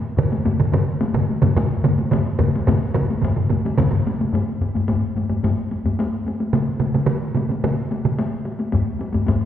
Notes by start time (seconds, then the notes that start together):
0.17 taiko low-mid, taiko mid
0.32 taiko high
0.45 taiko low-mid, taiko mid, taiko high
0.59 taiko low-mid, taiko mid
0.72 taiko low-mid, taiko mid, taiko high
1.01 taiko high
1.14 taiko low-mid, taiko mid
1.29 taiko high
1.42 taiko low-mid, taiko mid, taiko high
1.56 taiko low-mid, taiko mid, taiko high
1.84 taiko low-mid, taiko mid, taiko high
1.99 taiko high
2.11 taiko low-mid, taiko mid, taiko high
2.39 taiko low-mid, taiko mid, taiko high
2.55 taiko high
2.67 taiko low-mid, taiko mid, taiko high
2.94 taiko low-mid, taiko mid, taiko high
3.10 taiko high
3.22 taiko low-mid, taiko mid, taiko high
3.36 taiko low-mid, taiko mid
3.49 taiko low-mid, taiko mid, taiko high
3.65 taiko high
3.78 taiko low-mid, taiko mid, taiko high
3.91 taiko low-mid, taiko mid
4.07 taiko high
4.21 taiko high
4.34 taiko low-mid, taiko high
4.61 taiko low-mid, taiko high
4.75 taiko low-mid, taiko high
4.88 taiko low-mid, taiko high
5.15 taiko low-mid, taiko high
5.30 taiko low-mid, taiko high
5.43 taiko low-mid, taiko high
5.71 taiko high
5.85 taiko low-mid, taiko high
5.99 taiko high
6.26 taiko high
6.40 taiko high
6.53 taiko mid, taiko high
6.80 taiko mid, taiko high
6.94 taiko mid, taiko high
7.06 taiko mid, taiko high
7.35 taiko mid, taiko high
7.49 taiko mid, taiko high
7.64 taiko mid, taiko high
7.91 taiko high
8.05 taiko mid, taiko high
8.19 taiko high
8.45 taiko high
8.59 taiko high
8.72 taiko low-mid, taiko high
8.99 taiko high
9.13 taiko low-mid, taiko high
9.27 taiko low-mid, taiko high